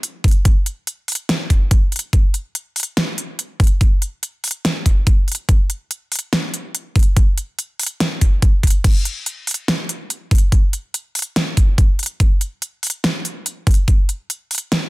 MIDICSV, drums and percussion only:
0, 0, Header, 1, 2, 480
1, 0, Start_track
1, 0, Tempo, 419580
1, 517, Time_signature, 4, 2, 24, 8
1, 17034, End_track
2, 0, Start_track
2, 0, Title_t, "Drums"
2, 37, Note_on_c, 9, 42, 80
2, 151, Note_off_c, 9, 42, 0
2, 276, Note_on_c, 9, 42, 50
2, 277, Note_on_c, 9, 36, 112
2, 320, Note_off_c, 9, 42, 0
2, 320, Note_on_c, 9, 42, 66
2, 357, Note_off_c, 9, 42, 0
2, 357, Note_on_c, 9, 42, 78
2, 391, Note_off_c, 9, 36, 0
2, 472, Note_off_c, 9, 42, 0
2, 517, Note_on_c, 9, 36, 124
2, 517, Note_on_c, 9, 42, 79
2, 631, Note_off_c, 9, 42, 0
2, 632, Note_off_c, 9, 36, 0
2, 757, Note_on_c, 9, 42, 67
2, 871, Note_off_c, 9, 42, 0
2, 997, Note_on_c, 9, 42, 76
2, 1112, Note_off_c, 9, 42, 0
2, 1237, Note_on_c, 9, 46, 86
2, 1280, Note_on_c, 9, 42, 63
2, 1317, Note_off_c, 9, 42, 0
2, 1317, Note_on_c, 9, 42, 80
2, 1351, Note_off_c, 9, 46, 0
2, 1432, Note_off_c, 9, 42, 0
2, 1477, Note_on_c, 9, 38, 123
2, 1477, Note_on_c, 9, 42, 77
2, 1591, Note_off_c, 9, 38, 0
2, 1591, Note_off_c, 9, 42, 0
2, 1717, Note_on_c, 9, 36, 63
2, 1717, Note_on_c, 9, 42, 65
2, 1831, Note_off_c, 9, 36, 0
2, 1831, Note_off_c, 9, 42, 0
2, 1957, Note_on_c, 9, 36, 109
2, 1957, Note_on_c, 9, 42, 78
2, 2071, Note_off_c, 9, 36, 0
2, 2071, Note_off_c, 9, 42, 0
2, 2197, Note_on_c, 9, 42, 49
2, 2240, Note_off_c, 9, 42, 0
2, 2240, Note_on_c, 9, 42, 62
2, 2277, Note_off_c, 9, 42, 0
2, 2277, Note_on_c, 9, 42, 79
2, 2391, Note_off_c, 9, 42, 0
2, 2437, Note_on_c, 9, 36, 121
2, 2437, Note_on_c, 9, 42, 78
2, 2551, Note_off_c, 9, 36, 0
2, 2551, Note_off_c, 9, 42, 0
2, 2677, Note_on_c, 9, 42, 65
2, 2792, Note_off_c, 9, 42, 0
2, 2918, Note_on_c, 9, 42, 76
2, 3032, Note_off_c, 9, 42, 0
2, 3157, Note_on_c, 9, 46, 90
2, 3201, Note_on_c, 9, 42, 61
2, 3237, Note_off_c, 9, 42, 0
2, 3237, Note_on_c, 9, 42, 74
2, 3272, Note_off_c, 9, 46, 0
2, 3352, Note_off_c, 9, 42, 0
2, 3397, Note_on_c, 9, 38, 119
2, 3397, Note_on_c, 9, 42, 77
2, 3512, Note_off_c, 9, 38, 0
2, 3512, Note_off_c, 9, 42, 0
2, 3637, Note_on_c, 9, 42, 63
2, 3752, Note_off_c, 9, 42, 0
2, 3877, Note_on_c, 9, 42, 74
2, 3991, Note_off_c, 9, 42, 0
2, 4117, Note_on_c, 9, 36, 105
2, 4117, Note_on_c, 9, 42, 45
2, 4160, Note_off_c, 9, 42, 0
2, 4160, Note_on_c, 9, 42, 61
2, 4197, Note_off_c, 9, 42, 0
2, 4197, Note_on_c, 9, 42, 75
2, 4231, Note_off_c, 9, 36, 0
2, 4312, Note_off_c, 9, 42, 0
2, 4357, Note_on_c, 9, 36, 115
2, 4358, Note_on_c, 9, 42, 75
2, 4471, Note_off_c, 9, 36, 0
2, 4472, Note_off_c, 9, 42, 0
2, 4598, Note_on_c, 9, 42, 64
2, 4712, Note_off_c, 9, 42, 0
2, 4838, Note_on_c, 9, 42, 76
2, 4952, Note_off_c, 9, 42, 0
2, 5077, Note_on_c, 9, 46, 94
2, 5120, Note_on_c, 9, 42, 62
2, 5158, Note_off_c, 9, 42, 0
2, 5158, Note_on_c, 9, 42, 74
2, 5192, Note_off_c, 9, 46, 0
2, 5272, Note_off_c, 9, 42, 0
2, 5318, Note_on_c, 9, 38, 113
2, 5318, Note_on_c, 9, 42, 77
2, 5432, Note_off_c, 9, 38, 0
2, 5432, Note_off_c, 9, 42, 0
2, 5557, Note_on_c, 9, 36, 62
2, 5558, Note_on_c, 9, 42, 61
2, 5671, Note_off_c, 9, 36, 0
2, 5672, Note_off_c, 9, 42, 0
2, 5797, Note_on_c, 9, 36, 100
2, 5797, Note_on_c, 9, 42, 76
2, 5911, Note_off_c, 9, 36, 0
2, 5912, Note_off_c, 9, 42, 0
2, 6038, Note_on_c, 9, 42, 46
2, 6081, Note_off_c, 9, 42, 0
2, 6081, Note_on_c, 9, 42, 61
2, 6118, Note_off_c, 9, 42, 0
2, 6118, Note_on_c, 9, 42, 74
2, 6232, Note_off_c, 9, 42, 0
2, 6277, Note_on_c, 9, 36, 115
2, 6278, Note_on_c, 9, 42, 79
2, 6391, Note_off_c, 9, 36, 0
2, 6392, Note_off_c, 9, 42, 0
2, 6517, Note_on_c, 9, 42, 67
2, 6632, Note_off_c, 9, 42, 0
2, 6758, Note_on_c, 9, 42, 77
2, 6872, Note_off_c, 9, 42, 0
2, 6998, Note_on_c, 9, 46, 93
2, 7041, Note_on_c, 9, 42, 63
2, 7078, Note_off_c, 9, 42, 0
2, 7078, Note_on_c, 9, 42, 76
2, 7112, Note_off_c, 9, 46, 0
2, 7192, Note_off_c, 9, 42, 0
2, 7238, Note_on_c, 9, 38, 118
2, 7238, Note_on_c, 9, 42, 80
2, 7352, Note_off_c, 9, 38, 0
2, 7352, Note_off_c, 9, 42, 0
2, 7478, Note_on_c, 9, 42, 64
2, 7592, Note_off_c, 9, 42, 0
2, 7717, Note_on_c, 9, 42, 76
2, 7832, Note_off_c, 9, 42, 0
2, 7957, Note_on_c, 9, 36, 101
2, 7958, Note_on_c, 9, 42, 47
2, 8000, Note_off_c, 9, 42, 0
2, 8000, Note_on_c, 9, 42, 62
2, 8037, Note_off_c, 9, 42, 0
2, 8037, Note_on_c, 9, 42, 76
2, 8071, Note_off_c, 9, 36, 0
2, 8152, Note_off_c, 9, 42, 0
2, 8197, Note_on_c, 9, 36, 118
2, 8197, Note_on_c, 9, 42, 81
2, 8311, Note_off_c, 9, 36, 0
2, 8312, Note_off_c, 9, 42, 0
2, 8437, Note_on_c, 9, 42, 69
2, 8552, Note_off_c, 9, 42, 0
2, 8678, Note_on_c, 9, 42, 78
2, 8792, Note_off_c, 9, 42, 0
2, 8917, Note_on_c, 9, 46, 99
2, 8960, Note_on_c, 9, 42, 65
2, 8997, Note_off_c, 9, 42, 0
2, 8997, Note_on_c, 9, 42, 80
2, 9032, Note_off_c, 9, 46, 0
2, 9111, Note_off_c, 9, 42, 0
2, 9157, Note_on_c, 9, 38, 116
2, 9157, Note_on_c, 9, 42, 83
2, 9271, Note_off_c, 9, 38, 0
2, 9271, Note_off_c, 9, 42, 0
2, 9397, Note_on_c, 9, 36, 61
2, 9397, Note_on_c, 9, 42, 67
2, 9511, Note_off_c, 9, 36, 0
2, 9511, Note_off_c, 9, 42, 0
2, 9637, Note_on_c, 9, 36, 103
2, 9637, Note_on_c, 9, 42, 78
2, 9751, Note_off_c, 9, 36, 0
2, 9751, Note_off_c, 9, 42, 0
2, 9877, Note_on_c, 9, 36, 60
2, 9877, Note_on_c, 9, 42, 48
2, 9921, Note_off_c, 9, 42, 0
2, 9921, Note_on_c, 9, 42, 65
2, 9958, Note_off_c, 9, 42, 0
2, 9958, Note_on_c, 9, 42, 79
2, 9991, Note_off_c, 9, 36, 0
2, 10072, Note_off_c, 9, 42, 0
2, 10117, Note_on_c, 9, 36, 122
2, 10117, Note_on_c, 9, 42, 82
2, 10117, Note_on_c, 9, 49, 77
2, 10231, Note_off_c, 9, 36, 0
2, 10232, Note_off_c, 9, 42, 0
2, 10232, Note_off_c, 9, 49, 0
2, 10357, Note_on_c, 9, 42, 70
2, 10471, Note_off_c, 9, 42, 0
2, 10597, Note_on_c, 9, 42, 82
2, 10711, Note_off_c, 9, 42, 0
2, 10837, Note_on_c, 9, 46, 98
2, 10880, Note_on_c, 9, 42, 67
2, 10916, Note_off_c, 9, 42, 0
2, 10916, Note_on_c, 9, 42, 82
2, 10951, Note_off_c, 9, 46, 0
2, 11031, Note_off_c, 9, 42, 0
2, 11077, Note_on_c, 9, 38, 119
2, 11077, Note_on_c, 9, 42, 82
2, 11191, Note_off_c, 9, 38, 0
2, 11191, Note_off_c, 9, 42, 0
2, 11316, Note_on_c, 9, 42, 69
2, 11431, Note_off_c, 9, 42, 0
2, 11557, Note_on_c, 9, 42, 82
2, 11671, Note_off_c, 9, 42, 0
2, 11797, Note_on_c, 9, 36, 104
2, 11797, Note_on_c, 9, 42, 52
2, 11840, Note_off_c, 9, 42, 0
2, 11840, Note_on_c, 9, 42, 66
2, 11877, Note_off_c, 9, 42, 0
2, 11877, Note_on_c, 9, 42, 84
2, 11911, Note_off_c, 9, 36, 0
2, 11991, Note_off_c, 9, 42, 0
2, 12037, Note_on_c, 9, 36, 126
2, 12037, Note_on_c, 9, 42, 86
2, 12151, Note_off_c, 9, 36, 0
2, 12152, Note_off_c, 9, 42, 0
2, 12277, Note_on_c, 9, 42, 71
2, 12391, Note_off_c, 9, 42, 0
2, 12518, Note_on_c, 9, 42, 84
2, 12632, Note_off_c, 9, 42, 0
2, 12757, Note_on_c, 9, 46, 93
2, 12801, Note_on_c, 9, 42, 69
2, 12838, Note_off_c, 9, 42, 0
2, 12838, Note_on_c, 9, 42, 86
2, 12872, Note_off_c, 9, 46, 0
2, 12952, Note_off_c, 9, 42, 0
2, 12997, Note_on_c, 9, 38, 126
2, 12997, Note_on_c, 9, 42, 85
2, 13112, Note_off_c, 9, 38, 0
2, 13112, Note_off_c, 9, 42, 0
2, 13237, Note_on_c, 9, 36, 64
2, 13237, Note_on_c, 9, 42, 68
2, 13352, Note_off_c, 9, 36, 0
2, 13352, Note_off_c, 9, 42, 0
2, 13477, Note_on_c, 9, 36, 113
2, 13477, Note_on_c, 9, 42, 81
2, 13592, Note_off_c, 9, 36, 0
2, 13592, Note_off_c, 9, 42, 0
2, 13717, Note_on_c, 9, 42, 52
2, 13761, Note_off_c, 9, 42, 0
2, 13761, Note_on_c, 9, 42, 66
2, 13797, Note_off_c, 9, 42, 0
2, 13797, Note_on_c, 9, 42, 83
2, 13912, Note_off_c, 9, 42, 0
2, 13957, Note_on_c, 9, 36, 127
2, 13957, Note_on_c, 9, 42, 84
2, 14072, Note_off_c, 9, 36, 0
2, 14072, Note_off_c, 9, 42, 0
2, 14197, Note_on_c, 9, 42, 70
2, 14312, Note_off_c, 9, 42, 0
2, 14437, Note_on_c, 9, 42, 82
2, 14552, Note_off_c, 9, 42, 0
2, 14677, Note_on_c, 9, 46, 91
2, 14720, Note_on_c, 9, 42, 66
2, 14757, Note_off_c, 9, 42, 0
2, 14757, Note_on_c, 9, 42, 84
2, 14791, Note_off_c, 9, 46, 0
2, 14871, Note_off_c, 9, 42, 0
2, 14918, Note_on_c, 9, 38, 124
2, 14918, Note_on_c, 9, 42, 85
2, 15032, Note_off_c, 9, 38, 0
2, 15032, Note_off_c, 9, 42, 0
2, 15158, Note_on_c, 9, 42, 68
2, 15272, Note_off_c, 9, 42, 0
2, 15398, Note_on_c, 9, 42, 82
2, 15512, Note_off_c, 9, 42, 0
2, 15637, Note_on_c, 9, 36, 115
2, 15638, Note_on_c, 9, 42, 50
2, 15681, Note_off_c, 9, 42, 0
2, 15681, Note_on_c, 9, 42, 66
2, 15718, Note_off_c, 9, 42, 0
2, 15718, Note_on_c, 9, 42, 79
2, 15751, Note_off_c, 9, 36, 0
2, 15833, Note_off_c, 9, 42, 0
2, 15877, Note_on_c, 9, 36, 123
2, 15878, Note_on_c, 9, 42, 79
2, 15991, Note_off_c, 9, 36, 0
2, 15993, Note_off_c, 9, 42, 0
2, 16118, Note_on_c, 9, 42, 68
2, 16233, Note_off_c, 9, 42, 0
2, 16358, Note_on_c, 9, 42, 78
2, 16473, Note_off_c, 9, 42, 0
2, 16598, Note_on_c, 9, 46, 88
2, 16641, Note_on_c, 9, 42, 65
2, 16678, Note_off_c, 9, 42, 0
2, 16678, Note_on_c, 9, 42, 80
2, 16712, Note_off_c, 9, 46, 0
2, 16792, Note_off_c, 9, 42, 0
2, 16837, Note_on_c, 9, 38, 124
2, 16837, Note_on_c, 9, 42, 79
2, 16952, Note_off_c, 9, 38, 0
2, 16952, Note_off_c, 9, 42, 0
2, 17034, End_track
0, 0, End_of_file